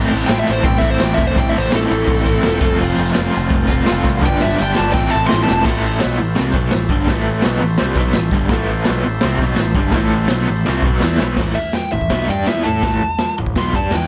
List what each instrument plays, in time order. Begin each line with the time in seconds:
Already playing: overdriven electric guitar A2 E3 A3 C4 E4, transistor combo organ E4 A4 C5
0.02 tambourine
0.10 picked electric bass A1, overdriven electric guitar C4 E4, tambourine
0.15 overdriven electric guitar A3
0.20 tambourine
0.26 picked electric bass A1, overdriven electric guitar A2 E3, lead electric guitar G5, snare, open hi-hat, tambourine
0.30 overdriven electric guitar A3 C4 E4
0.39 lead electric guitar E5
0.47 picked electric bass A1, overdriven electric guitar C4 E4, tambourine
0.51 overdriven electric guitar A3, lead electric guitar C5
0.64 picked electric bass A1, lead electric guitar G5, kick, open hi-hat
0.78 overdriven electric guitar E4, lead electric guitar E5, kick, tambourine
0.83 picked electric bass A1, overdriven electric guitar A3 C4
0.90 lead electric guitar C5
0.99 picked electric bass A1, overdriven electric guitar E3 A3 C4, snare, open hi-hat, tambourine
1.03 overdriven electric guitar E4, lead electric guitar G5
1.14 lead electric guitar E5, kick, tambourine
1.19 picked electric bass E1
1.27 lead electric guitar C5
1.35 picked electric bass A1, overdriven electric guitar A2 E3 A3, lead electric guitar G5, kick, open hi-hat, tambourine
1.39 overdriven electric guitar C4 E4
1.49 lead electric guitar E5
1.53 picked electric bass A1, overdriven electric guitar C4 E4, tambourine
1.58 overdriven electric guitar A3, lead electric guitar C5
1.62 tambourine
1.71 picked electric bass A1, overdriven electric guitar A2 E3 A3 C4, lead electric guitar A4, snare, open hi-hat, tambourine
1.75 overdriven electric guitar E4
1.88 picked electric bass A1, overdriven electric guitar C4 E4, tambourine
1.93 overdriven electric guitar A3
2.07 picked electric bass A1, kick, open hi-hat
2.25 picked electric bass A1, overdriven electric guitar C4 E4, kick, tambourine
2.30 overdriven electric guitar A3
2.43 picked electric bass E1, overdriven electric guitar E3 A3 C4, snare, open hi-hat, tambourine
2.47 overdriven electric guitar E4
2.54 tambourine
2.60 picked electric bass F1, overdriven electric guitar F3 A3 C4 F4, transistor combo organ F4 A4, kick, tambourine
2.66 transistor combo organ C5
2.76 overdriven electric guitar F3 A3 C4, open hi-hat, tambourine
2.81 picked electric bass F1, overdriven electric guitar F4
2.90 tambourine
2.96 picked electric bass F1, overdriven electric guitar C4 F4, tambourine
3.00 overdriven electric guitar A3
3.06 tambourine
3.12 overdriven electric guitar F3 A3 C4, snare, open hi-hat, tambourine
3.16 picked electric bass F1, overdriven electric guitar F4
3.31 overdriven electric guitar A3 C4 F4, tambourine
3.37 picked electric bass F1
3.50 picked electric bass F1, kick, open hi-hat
3.67 picked electric bass F1, overdriven electric guitar C4 F4, kick, tambourine
3.71 overdriven electric guitar A3
3.85 overdriven electric guitar F3 A3 C4, snare, open hi-hat, tambourine
3.90 picked electric bass F1, overdriven electric guitar F4
4.04 picked electric bass C2, kick, tambourine
4.21 picked electric bass G1, overdriven electric guitar G2 D3 G3 B3, transistor combo organ G4 B4 D5, kick, snare, tambourine
4.26 overdriven electric guitar D4, lead electric guitar G5
4.39 overdriven electric guitar B3 D4, lead electric guitar E5, snare, tambourine
4.43 picked electric bass G1, overdriven electric guitar G3
4.51 tambourine
4.57 picked electric bass G1, overdriven electric guitar G2 D3 G3 B3, tambourine
4.61 overdriven electric guitar D4, lead electric guitar G5
4.74 overdriven electric guitar B3 D4, lead electric guitar A5, snare
4.79 picked electric bass G1, overdriven electric guitar G3, tambourine
4.93 picked electric bass A1, overdriven electric guitar A2 E3 A3 C4, lead electric guitar G5, kick, snare
4.97 overdriven electric guitar E4, transistor combo organ A4 C5 E5, tambourine
5.06 tambourine
5.10 overdriven electric guitar C4 E4, lead electric guitar A5
5.14 picked electric bass A1, overdriven electric guitar A3, tambourine
5.24 lead electric guitar C6, tambourine
5.28 overdriven electric guitar E3 A3 C4, snare, tambourine
5.33 picked electric bass A1, overdriven electric guitar E4
5.43 lead electric guitar A5, snare
5.49 picked electric bass E1, tambourine
5.63 picked electric bass A1, overdriven electric guitar A2 E3 A3, kick, snare, crash
5.68 transistor combo organ A4 C5 E5
5.99 overdriven electric guitar B2 F#3 B3, snare, open hi-hat, tambourine
6.05 picked electric bass B1
6.18 picked electric bass A1, overdriven electric guitar A2 E3
6.35 picked electric bass C2, overdriven electric guitar C3 G3 C4, snare, open hi-hat
6.54 picked electric bass B1, overdriven electric guitar B2 F#3 B3, kick
6.71 picked electric bass A1, overdriven electric guitar A2 E3, snare, open hi-hat, tambourine
6.89 picked electric bass G1, overdriven electric guitar G2 D3 G3, kick
7.07 picked electric bass A1, overdriven electric guitar A2 E3 A3, kick, snare, open hi-hat
7.42 picked electric bass B1, overdriven electric guitar B2 F#3 B3, snare, open hi-hat, tambourine
7.61 picked electric bass A1, overdriven electric guitar A2 E3
7.78 picked electric bass C2, overdriven electric guitar C3 G3 C4, snare, open hi-hat
7.96 picked electric bass B1, overdriven electric guitar B2 F#3 B3, kick
8.13 picked electric bass A1, overdriven electric guitar A2 E3, snare, open hi-hat, tambourine
8.31 picked electric bass G1, overdriven electric guitar G2 D3 G3, kick
8.49 picked electric bass A1, overdriven electric guitar A2 E3 A3, transistor combo organ A4 C5 E5, kick, snare, open hi-hat
8.84 overdriven electric guitar B2 F#3 B3, snare, open hi-hat, tambourine
8.90 picked electric bass B1
9.04 picked electric bass A1, overdriven electric guitar A2 E3
9.21 picked electric bass C2, overdriven electric guitar C3 G3, snare, open hi-hat
9.25 overdriven electric guitar C4
9.38 picked electric bass B1, overdriven electric guitar B2, kick
9.43 overdriven electric guitar F#3 B3
9.56 picked electric bass A1, overdriven electric guitar A2 E3, snare, open hi-hat, tambourine
9.75 picked electric bass G1, overdriven electric guitar G2 D3 G3, kick
9.92 picked electric bass A1, overdriven electric guitar A2 E3 A3, kick, snare, open hi-hat
10.28 picked electric bass B1, overdriven electric guitar B2 F#3 B3, snare, open hi-hat, tambourine
10.48 picked electric bass A1, overdriven electric guitar A2 E3
10.65 picked electric bass C2, overdriven electric guitar C3 G3 C4, snare
10.83 picked electric bass B1, overdriven electric guitar B2 F#3 B3, kick
11.00 picked electric bass E2, overdriven electric guitar E3 B3 E4, snare, tambourine
11.18 picked electric bass B1, overdriven electric guitar B2 F#3 B3, snare
11.36 picked electric bass A1, overdriven electric guitar A2 E3, kick, snare, floor tom, crash
11.41 overdriven electric guitar A3
11.55 lead electric guitar E5, muted overdriven electric guitar stroke, floor tom
11.60 muted picked electric bass stroke
11.73 lead electric guitar G5, snare, floor tom
11.92 picked electric bass A1, overdriven electric guitar A2 E3, lead electric guitar E5, floor tom
12.01 kick
12.10 picked electric bass B1, overdriven electric guitar B2 F#3 B3, kick, snare, floor tom
12.28 picked electric bass G2, overdriven electric guitar G3 D4 G4, lead electric guitar G5, floor tom
12.47 picked electric bass E2, overdriven electric guitar E3 B3 E4, lead electric guitar E5, snare, floor tom
12.63 overdriven electric guitar A3 E4 A4, lead electric guitar A5, floor tom
12.68 picked electric bass A2
12.83 picked electric bass A1, overdriven electric guitar A2 E3 A3, kick, snare, floor tom
13.01 muted overdriven electric guitar stroke, muted picked electric bass stroke, floor tom
13.18 snare, floor tom
13.38 picked electric bass A1, overdriven electric guitar A2 E3, floor tom
13.46 kick
13.55 picked electric bass B1, overdriven electric guitar B2 F#3 B3, lead electric guitar C6, kick, snare, floor tom
13.73 picked electric bass G2, overdriven electric guitar G3 D4 G4, lead electric guitar A5, kick, floor tom
13.91 overdriven electric guitar E3 B3 E4, snare, floor tom
13.95 picked electric bass E2, lead electric guitar G5